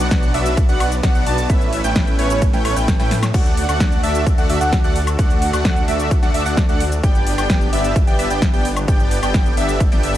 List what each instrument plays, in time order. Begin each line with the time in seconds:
Already playing: supersaw synth F#3 B3 D4
0.00 detuned saw bass B1, supersaw synth B3 D4 F#4 D5 F#5, analog synth lead F#5
0.11 kick, snare, closed hi-hat, ride, shaker
0.23 closed hi-hat, shaker
0.34 detuned saw bass B1, supersaw synth B3 D4 F#4 D5 E5, analog synth lead E5, open hi-hat, ride
0.46 closed hi-hat, shaker
0.57 kick, closed hi-hat, ride, shaker
0.69 detuned saw bass B1, supersaw synth B3 D4 F#4 D5 F#5, analog synth lead F#5, closed hi-hat, shaker
0.80 open hi-hat, ride, high woodblock
0.92 closed hi-hat, shaker
1.03 detuned saw bass B1, supersaw synth B3 D4 F#4 D5 F#5, analog synth lead F#5, kick, snare, closed hi-hat, ride, shaker
1.15 detuned saw bass B1, supersaw synth B3 D4 F#4 D5 F#5, analog synth lead F#5, closed hi-hat, shaker
1.26 detuned saw bass B1, supersaw synth B3 D4 F#4 D5 A5, analog synth lead A5, open hi-hat, ride
1.38 closed hi-hat, shaker
1.50 detuned saw bass A1, supersaw synth A3 C#4 E4 B4 E5, analog synth lead E5, kick, closed hi-hat, ride, shaker
1.61 closed hi-hat, shaker
1.73 open hi-hat, ride
1.84 detuned saw bass A1, supersaw synth A3 C#4 E4 B4 G5, analog synth lead G5, closed hi-hat, shaker
1.96 kick, snare, closed hi-hat, ride, shaker
2.07 closed hi-hat, shaker
2.19 detuned saw bass A1, supersaw synth A3 C#4 E4 B4 C#5, analog synth lead C#5, open hi-hat, ride
2.30 closed hi-hat, shaker
2.42 kick, closed hi-hat, ride, shaker
2.53 detuned saw bass A1, supersaw synth A3 C#4 E4 B4 G5, analog synth lead G5, snare, closed hi-hat, shaker
2.65 detuned saw bass A1, supersaw synth A3 C#4 E4 B4 C#5, analog synth lead C#5, open hi-hat, ride, high woodblock
2.76 detuned saw bass A1, supersaw synth A3 C#4 E4 B4 G5, analog synth lead G5, open hi-hat, shaker
2.88 kick, snare, closed hi-hat, ride, shaker
3.00 detuned saw bass A2, supersaw synth A3 C#4 E4 B4 G5, analog synth lead G5, snare, closed hi-hat, shaker
3.11 snare, open hi-hat, ride
3.23 snare, closed hi-hat, high woodblock, shaker
3.34 detuned saw bass D2, supersaw synth D3 A3 D4 F#4 A4 D5 F#5, analog synth lead F#5, kick, closed hi-hat, crash, ride, shaker
3.46 closed hi-hat, shaker
3.57 open hi-hat, ride
3.69 detuned saw bass D2, supersaw synth A3 D4 F#4 D5 F#5, analog synth lead F#5, closed hi-hat, high woodblock, shaker
3.80 kick, snare, closed hi-hat, ride, shaker
3.92 closed hi-hat, shaker
4.03 detuned saw bass D2, supersaw synth A3 D4 F#4 D5 E5, analog synth lead E5, open hi-hat, ride
4.15 closed hi-hat, shaker
4.27 kick, closed hi-hat, ride, shaker
4.38 detuned saw bass D2, supersaw synth A3 D4 F#4 D5 F#5, analog synth lead F#5, closed hi-hat, shaker
4.50 detuned saw bass D2, supersaw synth A3 D4 F#4 D5 E5, analog synth lead E5, open hi-hat, ride
4.61 detuned saw bass D2, supersaw synth A3 D4 F#4 D5 F#5, analog synth lead F#5, closed hi-hat, shaker
4.73 kick, snare, closed hi-hat, ride, shaker
4.84 detuned saw bass D2, supersaw synth A3 D4 F#4 D5 F#5, analog synth lead F#5, closed hi-hat, shaker
4.96 open hi-hat, ride
5.07 closed hi-hat, high woodblock, shaker
5.19 detuned saw bass D2, supersaw synth A3 D4 F#4 D5 F#5, analog synth lead F#5, kick, closed hi-hat, ride, shaker
5.30 closed hi-hat, shaker
5.42 open hi-hat, ride
5.53 detuned saw bass D2, supersaw synth A3 D4 F#4 D5 F#5, analog synth lead F#5, closed hi-hat, high woodblock, shaker
5.65 kick, snare, closed hi-hat, ride, shaker
5.76 closed hi-hat, shaker
5.88 detuned saw bass D2, supersaw synth A3 D4 F#4 D5 E5, analog synth lead E5, open hi-hat, ride
6.00 closed hi-hat, shaker
6.11 kick, closed hi-hat, ride, shaker
6.23 detuned saw bass D2, supersaw synth A3 D4 F#4 D5 F#5, analog synth lead F#5, snare, closed hi-hat, shaker
6.34 detuned saw bass D2, supersaw synth A3 D4 F#4 D5 E5, analog synth lead E5, open hi-hat, ride
6.46 detuned saw bass D2, supersaw synth A3 D4 F#4 D5 F#5, analog synth lead F#5, open hi-hat, shaker
6.57 kick, snare, closed hi-hat, ride, shaker
6.69 detuned saw bass D2, supersaw synth A3 D4 F#4 D5 F#5, analog synth lead F#5, closed hi-hat, shaker
6.80 open hi-hat, ride
6.92 closed hi-hat, shaker
7.03 detuned saw bass G1, supersaw synth B3 D4 G4 D5 G5, analog synth lead G5, kick, closed hi-hat, ride, shaker
7.15 closed hi-hat, shaker
7.27 open hi-hat, ride
7.38 detuned saw bass G1, supersaw synth B3 D4 G4 D5 G5, analog synth lead G5, closed hi-hat, high woodblock, shaker
7.50 kick, snare, closed hi-hat, ride, shaker
7.61 closed hi-hat, shaker
7.73 detuned saw bass G1, supersaw synth B3 D4 G4 D5 E5, analog synth lead E5, open hi-hat, ride
7.84 closed hi-hat, shaker
7.96 kick, closed hi-hat, ride, shaker
8.07 detuned saw bass G1, supersaw synth B3 D4 G4 D5 G5, analog synth lead G5, closed hi-hat, shaker
8.19 detuned saw bass G1, supersaw synth B3 D4 G4 D5 E5, analog synth lead E5, open hi-hat, ride
8.30 detuned saw bass G1, supersaw synth B3 D4 G4 D5 G5, analog synth lead G5, closed hi-hat, shaker
8.42 kick, snare, closed hi-hat, ride, shaker
8.53 detuned saw bass G1, supersaw synth B3 D4 G4 D5 G5, analog synth lead G5, closed hi-hat, shaker
8.65 open hi-hat, ride
8.77 closed hi-hat, high woodblock, shaker
8.88 detuned saw bass G1, supersaw synth B3 D4 G4 A4 D5 G5, analog synth lead G5, kick, closed hi-hat, ride, shaker
9.00 closed hi-hat, shaker
9.11 open hi-hat, ride
9.23 detuned saw bass G1, supersaw synth B3 D4 G4 D5 G5, analog synth lead G5, closed hi-hat, high woodblock, shaker
9.34 kick, snare, closed hi-hat, ride, shaker
9.46 closed hi-hat, shaker
9.57 detuned saw bass G1, supersaw synth B3 D4 G4 D5 E5, analog synth lead E5, open hi-hat, ride
9.69 closed hi-hat, shaker
9.80 kick, closed hi-hat, ride, shaker
9.92 detuned saw bass G1, supersaw synth B3 D4 G4 D5 G5, analog synth lead G5, snare, closed hi-hat, shaker
10.03 detuned saw bass G1, supersaw synth B3 D4 G4 D5 E5, analog synth lead E5, open hi-hat, ride